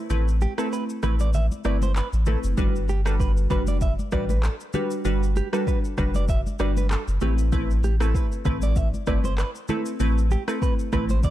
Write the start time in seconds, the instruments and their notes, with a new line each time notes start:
0.10 sub bass A1, synth pluck A3 C4 E4 B4, low conga, shaker
0.28 shaker
0.41 clean electric guitar G4, high conga, shaker
0.58 synth pluck A3 C4 E4 B4, clean electric guitar A4, cross-stick, shaker
0.73 clean electric guitar B4, shaker
0.90 shaker
1.03 sub bass A1, synth pluck A3 C4 E4 B4, clean electric guitar B4, cross-stick, low conga, shaker
1.20 clean electric guitar D5, high conga, shaker
1.34 clean electric guitar E5, low conga, shaker
1.52 high conga, shaker
1.64 sub bass G1, synth pluck A3 C4 E4 B4, clean electric guitar D5, cross-stick, shaker
1.82 clean electric guitar C5, high conga, shaker
1.96 clean electric guitar B4, clap, shaker
2.13 sub bass A1, shaker
2.26 synth pluck A3 C4 E4 B4, clean electric guitar A4, high conga, low conga, shaker
2.44 sub bass F#1, shaker
2.57 sub bass G1, synth pluck G3 D4 F#4 B4, kick, low conga, shaker
2.76 shaker
2.89 clean electric guitar G4, high conga, shaker
3.05 synth pluck G3 D4 F#4 B4, clean electric guitar A4, cross-stick, shaker
3.20 clean electric guitar B4, kick, shaker
3.37 shaker
3.50 sub bass F#1, synth pluck G3 D4 F#4 B4, clean electric guitar B4, kick, low conga, shaker
3.67 clean electric guitar D5, high conga, shaker
3.81 clean electric guitar E5, kick, shaker
3.99 high conga, shaker
4.12 sub bass A1, synth pluck G3 D4 F#4 B4, clean electric guitar D5, kick, cross-stick, shaker
4.29 clean electric guitar B4, high conga, shaker
4.43 clean electric guitar A4, cross-stick, clap, shaker
4.60 shaker
4.73 synth pluck G3 D4 F#4 B4, clean electric guitar G4, high conga, low conga, shaker
4.91 shaker
5.05 sub bass G1, synth pluck G3 D4 F#4 B4, low conga, shaker
5.23 shaker
5.36 clean electric guitar G4, high conga, shaker
5.53 synth pluck G3 D4 F#4 B4, clean electric guitar A4, cross-stick, shaker
5.67 clean electric guitar B4, kick, shaker
5.84 shaker
5.98 sub bass F#1, synth pluck G3 D4 F#4 B4, clean electric guitar B4, kick, cross-stick, low conga, shaker
6.14 clean electric guitar D5, high conga, shaker
6.28 clean electric guitar E5, kick, shaker
6.47 high conga, shaker
6.59 sub bass G1, synth pluck G3 D4 F#4 B4, clean electric guitar D5, cross-stick, shaker
6.77 clean electric guitar B4, high conga, shaker
6.91 clean electric guitar A4, cross-stick, clap, shaker
7.08 sub bass F#1, shaker
7.21 sub bass A1, synth pluck A3 C4 E4 B4, clean electric guitar G4, high conga, low conga, shaker
7.38 shaker
7.52 synth pluck A3 C4 E4 B4, kick, low conga, shaker
7.71 shaker
7.84 clean electric guitar G4, high conga, shaker
8.00 synth pluck A3 C4 E4 B4, clean electric guitar A4, cross-stick, shaker
8.15 clean electric guitar B4, kick, shaker
8.32 shaker
8.45 sub bass A1, synth pluck A3 C4 E4 B4, clean electric guitar B4, kick, low conga, shaker
8.62 clean electric guitar D5, high conga, shaker
8.76 clean electric guitar E5, kick, shaker
8.94 high conga, shaker
9.07 sub bass G1, synth pluck A3 C4 E4 B4, clean electric guitar D5, kick, cross-stick, shaker
9.24 clean electric guitar C5, high conga, shaker
9.38 clean electric guitar B4, cross-stick, clap, shaker
9.55 shaker
9.68 synth pluck A3 C4 E4 B4, clean electric guitar A4, high conga, low conga, shaker
9.86 shaker
10.00 sub bass A1, synth pluck A3 C4 E4 B4, low conga, shaker
10.18 shaker
10.31 clean electric guitar G4, high conga, shaker
10.48 synth pluck A3 C4 E4 B4, clean electric guitar A4, cross-stick, shaker
10.62 clean electric guitar B4, kick, shaker
10.79 shaker
10.93 sub bass A1, synth pluck A3 C4 E4 B4, clean electric guitar B4, kick, cross-stick, low conga, shaker
11.09 clean electric guitar C5, high conga, shaker
11.23 clean electric guitar D5, kick, low conga, shaker